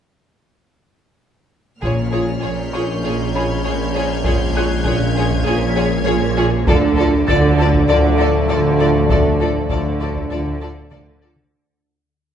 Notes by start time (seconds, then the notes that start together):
1.81 A#1 A#2 F3 G#3 C#4 F4 G#4 C#5 F6, taiko
2.12 F4 G#4 C#5
2.41 A#1 A#2 F4 G#4 C#5 G6
2.73 F4 G#4 C#5 C#6
3.04 A#1 A#2 F4 G#4 C#5 G#6
3.35 F4 G#4 C#5 B5
3.64 A#1 A#2 F4 G#4 C#5
3.95 F4 G#4 C#5
4.24 A#1 A#2 F4 G#4 C#5, taiko
4.55 F4 G#4 C#5 F#6
4.84 A#1 A#2 F4 G#4 C#5, taiko
5.16 F4 G#4 C#5
5.31 taiko
5.35 G#6
5.44 A#1 A#2 F4 G#4 C#5
5.76 F4 G#4 C#5
6.05 A#1 A#2 F4 G#4 C#5
6.37 F4 G#4 C#5
6.66 D2 A2 D3 F3 A3 D4 F4 A4 D5, taiko
6.97 F4 A4 D5
7.28 D2 D3 F4 A4 D5 A6, taiko
7.57 F4 A4 D5
7.74 taiko
7.88 D2 D3 F4 A4 D5
8.17 F4 A4 D5
8.49 D2 D3 F4 A4 D5
8.79 F4 A4 D5
9.09 D2 D3 F4 A4 D5, taiko
9.24 taiko mid
9.39 F4 A4 D5
9.70 D2 D3 F4 A4 D5, taiko
10.00 F4 A4 D5
10.16 taiko
10.31 D2 D3 F4 A4 D5
10.61 F4 A4 D5
10.91 D2 D3 F4 A4 D5, taiko mid
11.22 F4 A4 D5
11.36 taiko mid